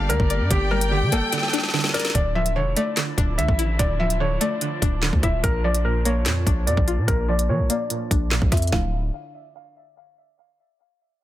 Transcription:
Already playing: G1 G3 A#3 D4 G4 D5
0.09 D2 D3 A#4, closed hi-hat
0.20 G1, kick
0.30 D5, closed hi-hat
0.40 G2
0.51 G1 D3 G4 G5, kick, closed hi-hat
0.71 G3 A#4
0.81 closed hi-hat
0.91 D3 G4
1.02 D3
1.12 G1 A#3 A4, closed hi-hat
1.32 D3, snare, closed hi-hat
1.38 snare
1.43 snare
1.48 snare
1.53 D4, snare, closed hi-hat
1.58 snare
1.63 snare
1.69 snare
1.74 D3, snare
1.79 snare
1.84 snare
1.89 snare
1.94 A#4 D5, snare, closed hi-hat
2.00 snare, closed hi-hat
2.05 snare, closed hi-hat
2.10 snare, closed hi-hat
2.15 D1 D3 F3 D4 E4 D5, kick, closed hi-hat
2.35 F3 E5
2.46 closed hi-hat
2.56 E1 D3 C#5
2.77 A3 D5, closed hi-hat
2.97 D3, snare, clap, closed hi-hat
3.18 D1 D4, kick, closed hi-hat
3.38 D2 D3 E5, closed hi-hat
3.48 A1, kick
3.59 E4, closed hi-hat
3.79 D1 D3 D5, kick, closed hi-hat
3.99 F3 E5
4.10 closed hi-hat
4.20 D3 C#5
4.41 A3 D5, closed hi-hat
4.61 D3, closed hi-hat
4.82 D1 D4, kick, closed hi-hat
5.02 D3, snare, clap
5.13 D2, kick
5.23 D1 E4 E5, kick, cross-stick, closed hi-hat
5.43 A#1 A#2 A#3 A#4, kick, closed hi-hat
5.64 F3 D5
5.75 closed hi-hat
5.85 A#2 A#4
6.05 A#3 C#5, closed hi-hat
6.26 F2 A#2, snare, clap, closed hi-hat
6.47 A#1 D4, kick, closed hi-hat
6.67 F2 A#2 D5, closed hi-hat
6.77 A#1, kick
6.88 F4, closed hi-hat
6.98 A#2
7.08 A#1 A#2 A#4, kick, closed hi-hat
7.28 F3 D5
7.39 closed hi-hat
7.49 A#2 F3 C#5
7.59 A#1
7.70 A#3 D5, closed hi-hat
7.90 A#2, closed hi-hat
8.11 A#1 D4, kick, closed hi-hat
8.31 A#2, snare, clap
8.42 A#1, kick
8.52 F2 F4 E5, kick, cross-stick, snare, closed hi-hat
8.57 closed hi-hat
8.62 closed hi-hat
8.67 closed hi-hat
8.72 D1 D3 F3 A3 D4 E4 F4 F5, kick, snare

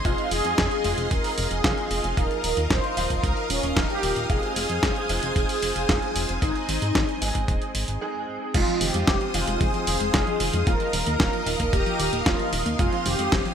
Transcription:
Already playing: G#4 D#5 C6
0.05 F1 G#3 C4 D#4 F4 F5, kick, closed hi-hat
0.18 closed hi-hat
0.31 F1 G#4, open hi-hat
0.45 F2, closed hi-hat
0.58 F1, kick, snare, closed hi-hat
0.71 closed hi-hat
0.84 F1 G#3 C4 D#4 F4, open hi-hat
0.98 F1, closed hi-hat
1.11 D#1 A#4, kick, closed hi-hat
1.24 open hi-hat
1.38 F1, open hi-hat
1.51 F1 G#4, closed hi-hat
1.64 F1 G#3 C4 D#4 F4, kick, snare, closed hi-hat
1.78 closed hi-hat
1.91 F1 G#4, open hi-hat
2.04 F1, closed hi-hat
2.17 D#1 F3 A#3 D#4 F4 A#4 D#6, kick, closed hi-hat
2.31 closed hi-hat
2.44 D#1, open hi-hat
2.57 D#2, closed hi-hat
2.70 D#1 C5, kick, snare, closed hi-hat
2.84 closed hi-hat
2.97 D#1 F3 A#3 D#4 F4, open hi-hat
3.10 D#1, kick, closed hi-hat
3.24 C#2 A#4, kick, closed hi-hat
3.37 closed hi-hat
3.50 D#1 C#4, open hi-hat
3.63 D#1, closed hi-hat
3.77 D#1 F3 A#3 D#4 F4, kick, snare, closed hi-hat
3.90 G4, closed hi-hat
4.03 D#1, open hi-hat
4.16 D#1, closed hi-hat
4.30 F1 G#3 C4 D#4 F4 G#4 C5 G#5, kick, closed hi-hat
4.43 closed hi-hat
4.56 F1, open hi-hat
4.70 F2, closed hi-hat
4.83 F1, kick, snare, closed hi-hat
4.96 closed hi-hat
5.09 F1 G#3 C4 D#4 F4, open hi-hat
5.23 F1, closed hi-hat
5.36 D#1 G#4, kick, closed hi-hat
5.49 open hi-hat
5.62 F1, open hi-hat
5.76 F1, closed hi-hat
5.89 F1 G#3 C4 D#4 F4, kick, snare, closed hi-hat
6.02 closed hi-hat
6.16 F1, open hi-hat
6.29 F1, closed hi-hat
6.42 G#1 G#3 C4 D#4 G#4 D#5, kick, closed hi-hat
6.55 closed hi-hat
6.69 G#1, open hi-hat
6.82 G#2, closed hi-hat
6.95 G#1, kick, snare, closed hi-hat
7.09 closed hi-hat
7.22 G#1 G#3 C4 D#4 G#4, open hi-hat
7.35 G#1, kick, closed hi-hat
7.48 D#1, kick, closed hi-hat
7.62 closed hi-hat
7.75 G#1, open hi-hat
7.88 G#1, closed hi-hat
8.01 G#3 C4 D#4 G#4
8.54 F1 G#3 C4 D#4 F4 C5 F5 C6 D#6, kick, closed hi-hat, crash
8.68 F3, closed hi-hat
8.81 F1 D#3 G4, open hi-hat
8.94 F2 G#3, closed hi-hat
9.07 F1 G#3, kick, snare, closed hi-hat
9.21 F3, closed hi-hat
9.34 F1 D#3 G#3 C4 D#4 F4, open hi-hat
9.47 F1 G#3, closed hi-hat
9.61 F1 G#3 G#4, kick, closed hi-hat
9.74 F3, closed hi-hat
9.87 F1 D#3, open hi-hat
10.01 F1 G#3, closed hi-hat
10.14 F1 G#3 C4 D#4 F4, kick, snare, closed hi-hat
10.27 F3, closed hi-hat
10.40 F1 D#3, open hi-hat
10.53 F2 G#3, closed hi-hat
10.67 D#1 F3 A#3 D#4 F4 A#4 D#5 D#6, kick, closed hi-hat
10.80 F3, closed hi-hat
10.93 D#1 D#3, open hi-hat
11.07 D#2 A#3, closed hi-hat
11.20 D#1 A#3, kick, snare, closed hi-hat
11.33 F3, closed hi-hat
11.46 D#1 D#3 F3 A#3 D#4 F4, open hi-hat
11.60 D#1 A#3, kick, closed hi-hat
11.73 D#1 A#3 G4, kick, closed hi-hat
11.86 F3, closed hi-hat
11.99 D#1 D#3, open hi-hat
12.13 D#1 A#3, closed hi-hat
12.26 D#1 F3 A#3 D#4 F4, kick, snare, closed hi-hat
12.39 F3, closed hi-hat
12.52 D#1 D#3, open hi-hat
12.66 D#2 A#3, closed hi-hat
12.79 F1 G#3 C4 D#4 F4 C5 C6 D#6, kick, closed hi-hat
12.92 F3, closed hi-hat
13.06 F1 D#3 G4, open hi-hat
13.19 F2 G#3, closed hi-hat
13.32 F1 G#3, kick, snare, closed hi-hat
13.45 F3, closed hi-hat

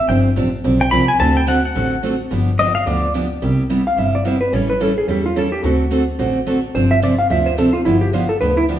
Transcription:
0.09 G1 C3 F3 C4 D4 G4 G5
0.36 A1 C3 F3 C4 D4 G4
0.64 B1 C3 F3 C4 D4 G4
0.81 G5
0.91 C2 C3 F3 C4 D4 G4 B5
1.08 G#5
1.19 D2 D3 A3 C4 F#4 A4 A5
1.37 G5
1.47 D3 A3 C4 F#4 A4 F#5
1.65 F#5
1.75 A1 D3 A3 C4 F#4 A4
2.03 D3 A3 C4 F#4 A4
2.31 G1 D3 F3 B3 D4 G4
2.59 D3 F3 B3 D4 G4 D#5
2.75 F5
2.86 D2 D3 F3 B3 D4 G4 D5
3.14 D3 F3 B3 D4 G4
3.42 C2 C3 G3 B3 E4 G4
3.69 C3 G3 B3 E4 G4
3.87 F5
3.97 G1 C3 G3 B3 E4 G4 E5
4.15 D5
4.25 C3 G3 B3 E4 G4 C5
4.41 B4
4.52 A1 E3 G3 C#4 E4 A4 C#5
4.70 B4
4.80 E3 G3 C#4 E4 A4
4.98 G#4
5.08 E2 E3 G3 C#4 E4 G4 A4
5.26 F4
5.36 E3 G3 C#4 E4 A4
5.52 G4
5.63 D2 D3 A3 C4 F#4 A4
5.91 D3 A3 C4 F#4 A4
6.19 A1 D3 A3 C4 F#4 A4
6.46 D3 A3 C4 F#4 A4
6.75 G1 C3 F3 C4 D4 G4 C5
6.91 E5
7.02 C3 F3 C4 D4 G4 D5
7.19 F5
7.30 D2 C3 F3 C4 D4 G4 E5
7.46 C5
7.58 C3 F3 C4 D4 G4 A4
7.73 F4
7.85 G1 D3 F3 B3 D4 E4 G4
8.01 G4
8.13 D3 F3 B3 D4 F4 G4
8.29 A4
8.41 D2 D3 F3 B3 D4 G4 B4
8.57 E4
8.68 D3 F3 B3 D4 G4

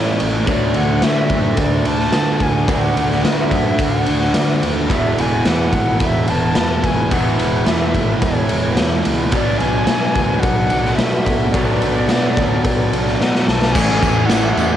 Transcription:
Already playing: A2 E3 A3 C#4 E4 A4 C#5 E5 C#6
0.20 A1, ride
0.47 D2 D3 A3 D4 F#4 A4 D5 F#5 B5, kick, ride
0.74 D2 F#5, ride
1.02 D3 E5, snare, ride
1.30 F#2, kick, ride
1.57 D2 D5, kick, ride
1.85 D2 D3 A3 D4 A5, ride
1.99 snare
2.12 D3 A3 D4, snare, ride
2.40 D2 G#5, kick, ride
2.67 D2 D3 A3 D4 F#4, kick, ride
2.72 F#5
2.96 D2, ride
3.11 snare
3.24 D3 E5, snare, ride
3.51 F#2, kick, ride
3.79 D2, kick, ride
3.84 F#5
4.06 D2 D3 A3 D4, ride
4.21 snare
4.34 D3 A3 D4, snare, ride
4.63 D#2, ride
4.89 E1 E2 B2 E3 G#3 B3 E4 B4 E5, kick, ride
5.18 E1 G#5, ride
5.46 E2 F#5, snare, ride
5.72 G#1, kick, ride
6.00 E1 E5, kick, ride
6.27 E1 E2 B2 E3 A5, ride
6.55 E2 B2 E3, snare, ride
6.84 E1 G#5, kick, ride
7.11 E1 E2 B2 E3 G#3 B3 E4 F#5, kick, ride
7.39 E1, ride
7.66 E2 E5, snare, ride
7.94 G#1, kick, ride
8.22 E1 C#5, kick, ride
8.49 E1 E2 B2 E3, ride
8.77 E2 B2 E3, snare, ride
9.05 C#2, ride
9.32 B1 B2 F#3 B3 A4 D5 F#5, kick, ride
9.37 D4
9.58 B1 G#5, ride
9.87 B2, snare, ride
10.15 D2, kick, ride
10.40 B1 F#5, kick, ride
10.70 B1 B2 F#3 B3, ride
10.85 snare
10.96 B2 F#3 E5, snare, ride
11.00 B3
11.26 B1, kick, ride
11.52 B1 B2 F#3 B3 D5, kick, ride
11.57 B3 D4
11.82 B1, ride
12.09 B2, snare, ride
12.37 D2, kick, ride
12.64 B1, kick, ride
12.92 B1 B2 F#3 B3, ride
13.07 snare
13.20 B2 F#3 B3 F#5, snare
13.35 snare
13.48 B1 A5, snare
13.62 snare
13.72 A1 A2 E3 A3 C#4 A4 E5 G#5, kick, crash, tambourine
13.77 E3 A3 C#4 E4
13.89 snare
14.01 E2 A2 E3 A3 C#4 E4, kick, tambourine, crash
14.16 A3 C#4 E4
14.26 A1 A2 E3 F#5, snare, crash
14.30 E3 A3 C#4 E4, tambourine
14.44 E3 A3
14.57 E2 E3 A3 C#4 E4, tambourine, crash
14.71 E3 A3, muted overdriven electric guitar stroke

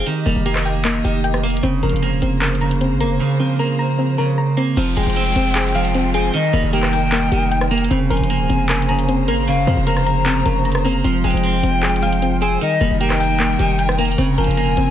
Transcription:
0.06 D#3 A#3 G4 D#5, closed hi-hat
0.26 F1 G3 A#3
0.36 F1
0.46 A#3 G4, closed hi-hat
0.56 cross-stick, clap
0.65 G5, open hi-hat
0.85 A#3, clap, closed hi-hat
1.04 F1 D#3 G4, closed hi-hat
1.24 G5, closed hi-hat
1.34 cross-stick
1.43 A#3, closed hi-hat
1.50 closed hi-hat
1.57 closed hi-hat
1.63 F1 C#3 C4 C5, closed hi-hat
1.83 F1 F3 A#4, closed hi-hat
1.89 F1, closed hi-hat
1.96 closed hi-hat
2.02 A#3, closed hi-hat
2.12 D#1
2.22 F1 C4, closed hi-hat
2.42 A#4, clap, closed hi-hat
2.48 closed hi-hat
2.55 closed hi-hat
2.61 C#3 A#5, closed hi-hat
2.71 closed hi-hat
2.81 C4, closed hi-hat
2.91 G#1
3.00 A#3 A#4, closed hi-hat
3.06 F1
3.20 C#3
3.40 F3 C4
3.59 A#3 A#4
3.79 A#5
3.99 C4
4.18 C#3 A#4
4.38 A#5
4.57 A#3 C4
4.77 F1 F3 G#3 C4 F4 C5, closed hi-hat, crash, downlifter
4.97 F1 G#3 G#4 G5, closed hi-hat
5.03 F1, closed hi-hat
5.10 closed hi-hat
5.16 C4, closed hi-hat
5.36 F1 C4, closed hi-hat
5.55 G#4, clap, closed hi-hat
5.62 closed hi-hat
5.68 closed hi-hat
5.75 F3 F5, closed hi-hat
5.85 closed hi-hat
5.95 C4, closed hi-hat
6.14 C4 G#4 G#5, closed hi-hat
6.34 D#3 G3 D#4 A#4 D#5, closed hi-hat
6.53 F1 G3 A#3
6.63 F1
6.73 A#3 G4 G5, closed hi-hat
6.83 cross-stick, clap
6.93 G5, open hi-hat
7.12 A#3, clap, closed hi-hat
7.32 F1 D#3 G4, closed hi-hat
7.51 G5, closed hi-hat
7.61 cross-stick
7.71 A#3, closed hi-hat
7.78 closed hi-hat
7.84 closed hi-hat
7.91 F1 C#3 A#3 C4 C5, closed hi-hat
8.10 F1 F3 A#4 G#5, closed hi-hat
8.17 F1, closed hi-hat
8.24 closed hi-hat
8.30 A#3, closed hi-hat
8.40 D#1
8.50 F1 C4, closed hi-hat
8.69 A#4, clap, closed hi-hat
8.76 closed hi-hat
8.82 closed hi-hat
8.89 C#3 A#5, closed hi-hat
8.99 closed hi-hat
9.08 C4, closed hi-hat
9.28 G#1 A#3 A#4 A#5, closed hi-hat
9.47 F1 C#3 F5, closed hi-hat
9.67 F2 F3 C4
9.77 F1
9.87 A#3 A#4 A#5, closed hi-hat
9.97 cross-stick
10.06 A#5, closed hi-hat
10.26 C4, clap, closed hi-hat
10.46 F1 C#3 A#4, closed hi-hat
10.65 A#5, closed hi-hat
10.72 cross-stick, closed hi-hat
10.78 closed hi-hat
10.85 A#3 C4, open hi-hat
11.04 F1 F3 G#3 C4 F4, closed hi-hat
11.24 F1 G#3 G#4 G5, closed hi-hat
11.31 F1, closed hi-hat
11.37 closed hi-hat
11.44 C4, closed hi-hat
11.63 F1 C4, closed hi-hat
11.83 G#4, clap, closed hi-hat
11.89 closed hi-hat
11.96 closed hi-hat
12.02 F3 F5, closed hi-hat
12.12 closed hi-hat
12.22 C4, closed hi-hat
12.42 C4 G#4 G#5, closed hi-hat
12.61 D#3 G3 D#4 A#4 D#5, closed hi-hat
12.81 F1 G3 A#3
12.91 F1
13.00 A#3 G4 G5, closed hi-hat
13.10 cross-stick, clap
13.20 G5, open hi-hat
13.40 A#3, clap, closed hi-hat
13.59 F1 D#3 G4, closed hi-hat
13.79 G5, closed hi-hat
13.89 cross-stick
13.98 A#3, closed hi-hat
14.05 closed hi-hat
14.12 closed hi-hat
14.18 F1 C#3 C4, closed hi-hat
14.38 F1 F3 A#4 G#5, closed hi-hat
14.44 F1, closed hi-hat
14.51 closed hi-hat
14.57 A#3, closed hi-hat
14.67 D#1
14.77 F1 C4, closed hi-hat

